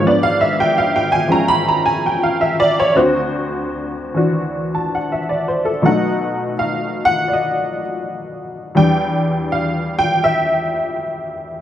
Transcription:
honky-tonk piano
0.00 G#2 F3
0.07 B3 D4 D5
0.23 F5
0.41 E5
0.60 G5
0.78 F5
0.96 G5
1.12 G#5
1.27 F3 G#3 C#4
1.32 A#5
1.48 B5
1.68 A#5
1.86 G#5
2.06 G5
2.23 F5
2.41 E5
2.60 D5
2.80 C#5
2.95 D2 D3 C4 F#4 C5
4.14 E3 D4 F#4
4.75 A5
4.95 F#5
5.12 E5
5.29 D5
5.48 C5
5.65 A4
5.82 B2 F#3 A3 F#5
5.86 D#4
6.59 F5
7.05 F#5
7.28 D5
7.33 D#5
8.75 E2 E3 G3 D4 G5
9.52 F5
9.99 G5
10.24 E5

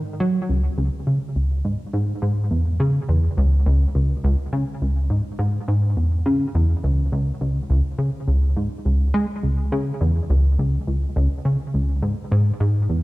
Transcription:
analog synth bass
0.20 F#3
0.49 C#2
0.78 C#2
1.07 C#3
1.36 C#2
1.65 G#2
1.93 G#2
2.22 G#2
2.51 E2
2.80 C#3
3.09 E2
3.37 C#2
3.66 C#2
3.95 C#2
4.24 C#2
4.53 C#3
4.82 C#2
5.10 G#2
5.39 G#2
5.68 G#2
5.97 E2
6.26 C#3
6.55 E2
6.83 C#2
7.12 C#2
7.41 C#2
7.70 C#2
7.98 C#3
8.28 C#2
8.57 G#2
8.85 C#2
9.14 G#3
9.43 C#2
9.72 C#3
10.01 E2
10.30 C#2
10.59 C#2
10.87 C#2
11.16 C#2
11.45 C#3
11.74 C#2
12.03 G#2
12.32 G#2
12.60 G#2
12.89 E2

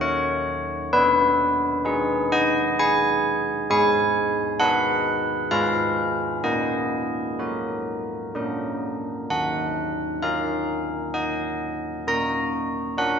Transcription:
church bells
Already playing: A#3 F#4
0.01 C#5
0.93 B3 B4
1.85 D#4 G#4
2.32 D#5
2.79 G#5
3.70 G#3 G#5
4.60 D#4 B4 F#5
5.51 G#3 F4 B4 F5
6.44 A#3 D#5
7.39 F#4 A#4
8.35 A#3 D4 A#4
9.30 D#3 F#5
10.22 D#4 A#4 F5
11.14 D#5
12.07 A#3 A#5
12.97 D4 A#4 F#5

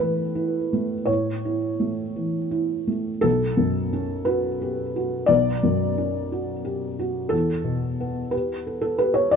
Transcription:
felt piano
Already playing: A2 A3 E4 A4
0.00 E3 B4
0.35 E4
0.73 A3
1.06 A2 C#5
1.45 E4
1.80 A3
2.16 E3
2.51 E4
2.87 A3
3.21 B1 A4
3.57 F#2
3.93 C#4
4.25 F#4 B4
4.62 G4
4.96 F#4
5.26 B1 D5
5.63 F#2
5.98 C#4
6.32 F#4
6.65 G4
6.99 F#4
7.29 E2 A4
7.64 B2
8.00 B3
8.31 G4 B4
8.67 A4
8.81 A4
8.98 G4 B4
9.14 C#5
9.31 E2 D5

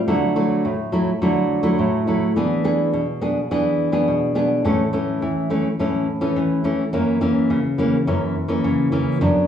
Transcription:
nylon-string guitar
0.08 D3 F#3 A3 E4
0.36 F#3 A3 E4
0.65 A2
0.92 F#3 A3 E4
1.22 D3 F#3 A3 E4
1.63 F#3 A3 E4
1.79 A2
2.07 F#3 A3 E4
2.36 E3 B3 D4 G#4
2.64 B3 D4 G#4
2.93 B2
3.21 B3 D4 G#4
3.51 E3 B3 D4 G#4
3.92 B3 D4 G#4
4.08 B2
4.35 B3 D4 G#4
4.65 A2 E3 A3 C#4
4.93 E3 A3 C#4
5.22 E3
5.50 E3 A3 C#4
5.79 A2 E3 A3 C#4
6.21 E3 A3 C#4
6.36 E3
6.64 E3 A3 C#4
6.93 F#2 E3 A#3 C#4
7.21 E3 A#3 C#4
7.50 C#3
7.78 E3 A#3 C#4
8.07 F#2 E3 A#3 C#4
8.48 E3 A#3 C#4
8.64 C#3
8.92 E3 A#3 C#4
9.21 F#2 F#3 B3 D4

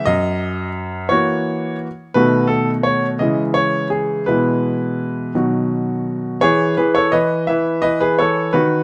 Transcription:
grand piano
0.06 F#2 D#5
1.09 E3 A#3 F#4 C#5
2.14 B2 D#3 A3 F#4 B4
2.47 A4
2.83 C#5
3.19 C#3 E3 G#3 E4 D#5
3.54 C#5
3.90 G#4
4.26 B2 E3 G#3 E4 B4
5.35 B2 D#3 F#3 F#4
6.41 E3 G#4 C#5
6.77 E3 G#4 B4
6.95 A4 C#5
7.12 E3 B4 D#5
7.47 E3 B4 E5
7.82 E3 B4 D#5
8.00 G#4 B4
8.19 E3 A4 C#5
8.53 D#3 F#4 B4

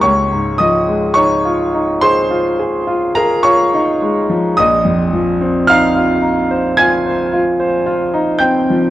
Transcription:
grand piano
0.01 C#2 C#5 C#6
0.32 G#2
0.58 F3 D#5 D#6
0.88 G#3
1.14 D#4 C#5 C#6
1.45 F4
1.74 D#4
2.01 G#4 C5 C6
2.31 F4
2.60 G#4
2.87 F4
3.15 G#4 A#4 A#5
3.43 F4 C#5 C#6
3.74 D#4
4.02 G#3
4.30 F3
4.57 A#1 D#5 D#6
4.85 F2
5.13 F3
5.41 C4
5.67 D#4 F5 F6
5.95 F4
6.22 D#4
6.51 C5
6.77 F4 G#5 G#6
7.06 C5
7.33 F4
7.60 C5
7.86 F4
8.14 D#4
8.39 C4 G5 G6
8.70 F3

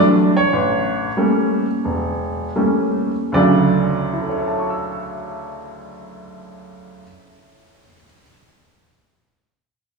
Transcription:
upright piano
Already playing: E3 F#3 G3 A3 D4
0.37 C#5
0.53 A1
1.17 G3 A3 A#3 C#4
1.85 E1
2.55 G3 A3 A#3 C#4
3.32 D2 C#3 D3 F#3 D5
4.13 E4
4.20 A4
4.29 C#5
4.38 E5
4.48 A5
4.59 C#6
4.70 E6

